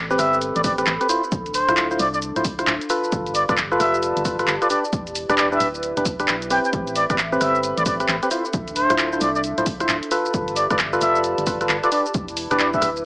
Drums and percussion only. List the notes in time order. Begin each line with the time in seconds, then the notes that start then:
0.11 shaker
0.19 cross-stick, open hi-hat, shaker
0.33 shaker
0.42 closed hi-hat, shaker
0.56 closed hi-hat, shaker
0.64 kick, open hi-hat, shaker
0.78 cross-stick, closed hi-hat, shaker
0.87 clap, shaker
1.01 closed hi-hat, shaker
1.09 open hi-hat, shaker
1.24 shaker
1.32 kick, closed hi-hat, shaker
1.46 closed hi-hat, shaker
1.54 open hi-hat, shaker
1.69 cross-stick, closed hi-hat, shaker
1.77 clap, shaker
1.91 shaker
1.99 open hi-hat, shaker
2.14 shaker
2.22 closed hi-hat, shaker
2.36 closed hi-hat, shaker
2.45 kick, open hi-hat, shaker
2.59 cross-stick, closed hi-hat, shaker
2.67 clap, shaker
2.81 closed hi-hat, shaker
2.90 open hi-hat, shaker
3.04 shaker
3.12 kick, closed hi-hat, shaker
3.27 closed hi-hat, shaker
3.35 open hi-hat, shaker
3.49 kick, cross-stick, closed hi-hat, shaker
3.57 clap, shaker
3.72 shaker
3.80 cross-stick, open hi-hat, shaker
3.94 shaker
4.03 closed hi-hat, shaker
4.17 closed hi-hat, shaker
4.25 kick, open hi-hat, shaker
4.39 cross-stick, closed hi-hat, shaker
4.48 clap, shaker
4.62 closed hi-hat, shaker
4.70 open hi-hat, shaker
4.85 shaker
4.93 kick, closed hi-hat, shaker
5.07 closed hi-hat, shaker
5.15 open hi-hat, shaker
5.30 cross-stick, closed hi-hat, shaker
5.38 clap, shaker
5.52 shaker
5.60 open hi-hat, shaker
5.74 shaker
5.83 closed hi-hat, shaker
5.97 closed hi-hat, shaker
6.05 kick, open hi-hat, shaker
6.20 cross-stick, closed hi-hat, shaker
6.28 clap, shaker
6.42 closed hi-hat, shaker
6.50 open hi-hat, shaker
6.65 shaker
6.73 kick, closed hi-hat, shaker
6.87 closed hi-hat, shaker
6.96 open hi-hat, shaker
7.10 kick, cross-stick, closed hi-hat, shaker
7.18 clap, shaker
7.32 shaker
7.41 cross-stick, open hi-hat, shaker
7.55 shaker
7.63 closed hi-hat, shaker
7.78 closed hi-hat, shaker
7.86 kick, open hi-hat, shaker
8.00 cross-stick, closed hi-hat, shaker
8.08 clap, shaker
8.23 closed hi-hat, shaker
8.31 open hi-hat, shaker
8.45 shaker
8.53 kick, closed hi-hat, shaker
8.68 closed hi-hat, shaker
8.76 open hi-hat, shaker
8.90 cross-stick, closed hi-hat, shaker
8.98 clap, shaker
9.13 shaker
9.21 open hi-hat, shaker
9.35 shaker
9.44 closed hi-hat, shaker
9.58 closed hi-hat, shaker
9.66 kick, open hi-hat, shaker
9.80 cross-stick, closed hi-hat, shaker
9.89 clap, shaker
10.03 closed hi-hat, shaker
10.11 open hi-hat, shaker
10.25 shaker
10.34 kick, closed hi-hat, shaker
10.48 closed hi-hat, shaker
10.56 open hi-hat, shaker
10.70 kick, cross-stick, closed hi-hat, shaker
10.79 clap, shaker
10.93 shaker
11.01 open hi-hat, shaker
11.16 shaker
11.24 closed hi-hat, shaker
11.38 closed hi-hat, shaker
11.47 kick, open hi-hat, shaker
11.61 cross-stick, closed hi-hat, shaker
11.69 clap, shaker
11.84 closed hi-hat, shaker
11.92 open hi-hat, shaker
12.06 shaker
12.14 kick, closed hi-hat, shaker
12.28 closed hi-hat, shaker
12.37 open hi-hat, shaker
12.51 cross-stick, closed hi-hat, shaker
12.59 clap, shaker
12.74 kick, shaker
12.82 cross-stick, open hi-hat, shaker
12.96 shaker